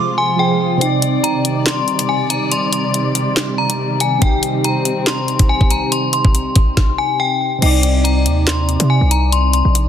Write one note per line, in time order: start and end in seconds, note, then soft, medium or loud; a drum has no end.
0.00 0.78 C3 medium
0.00 0.33 F3 medium
0.00 0.78 F3 medium
0.00 0.78 G#3 medium
0.00 0.34 F4 medium
0.00 0.78 F4 medium
0.00 0.35 G#4 medium
0.00 0.36 C5 medium
0.00 0.14 C6 medium
0.00 0.16 D6 medium
0.18 0.36 G#5 medium
0.18 0.78 C6 medium
0.36 0.80 F3 medium
0.36 0.81 F4 soft
0.36 0.81 G#4 medium
0.36 0.82 C5 medium
0.36 0.79 G5 medium
0.77 4.16 C3 medium
0.77 4.17 C4 medium
0.81 6.73 C3 medium
0.81 6.73 D#3 medium
0.81 6.73 G3 medium
0.81 4.18 D#4 medium
0.81 4.18 D5 medium
0.81 4.19 D5 medium
0.81 1.21 G5 medium
0.81 closed hi-hat medium
1.02 closed hi-hat medium
1.24 1.64 A#5 medium
1.24 closed hi-hat medium
1.45 closed hi-hat medium
1.66 2.06 C6 medium
1.66 snare loud
1.66 clap loud
1.88 closed hi-hat soft
1.99 closed hi-hat medium
2.09 2.28 G#5 medium
2.30 2.49 A#5 medium
2.30 closed hi-hat medium
2.52 2.70 C6 medium
2.52 closed hi-hat medium
2.73 3.54 C6 medium
2.73 closed hi-hat medium
2.94 closed hi-hat medium
3.15 closed hi-hat medium
3.37 snare loud
3.37 clap medium
3.37 closed hi-hat medium
3.58 3.98 A#5 medium
3.70 closed hi-hat medium
4.00 4.19 G#5 medium
4.00 closed hi-hat medium
4.18 7.56 C3 medium
4.18 7.58 C4 medium
4.18 6.75 C4 medium
4.18 4.62 G5 medium
4.18 kick loud
4.18 closed hi-hat medium
4.23 7.59 D#4 medium
4.23 7.60 G4 medium
4.43 closed hi-hat medium
4.64 5.05 A#5 medium
4.64 closed hi-hat medium
4.85 closed hi-hat medium
5.07 5.47 C6 medium
5.07 snare loud
5.07 clap loud
5.28 closed hi-hat soft
5.39 kick loud
5.39 closed hi-hat medium
5.49 5.68 G#5 medium
5.61 kick medium
5.70 5.90 A#5 medium
5.70 closed hi-hat medium
5.92 6.11 C6 medium
5.92 closed hi-hat medium
6.13 6.94 C6 medium
6.13 closed hi-hat medium
6.25 kick medium
6.35 closed hi-hat medium
6.56 kick loud
6.56 closed hi-hat medium
6.77 kick loud
6.77 snare medium
6.98 7.17 G#5 medium
7.20 7.60 G5 medium
7.58 9.89 C3 medium
7.58 9.89 C4 medium
7.62 8.28 C2 loud
7.62 9.89 D#4 medium
7.62 9.89 D5 medium
7.62 8.02 G5 medium
7.62 closed hi-hat medium
7.62 crash loud
7.83 closed hi-hat medium
8.04 8.45 A#5 medium
8.04 closed hi-hat medium
8.26 8.77 D#2 loud
8.26 closed hi-hat medium
8.47 8.87 C6 medium
8.47 snare loud
8.47 clap loud
8.69 closed hi-hat soft
8.80 9.00 C3 loud
8.80 closed hi-hat medium
8.90 9.09 G#5 medium
9.01 9.62 C2 loud
9.11 9.30 A#5 medium
9.11 closed hi-hat medium
9.32 9.51 C6 medium
9.32 closed hi-hat medium
9.53 9.89 C6 medium
9.53 closed hi-hat medium
9.65 9.89 A#1 loud
9.75 closed hi-hat medium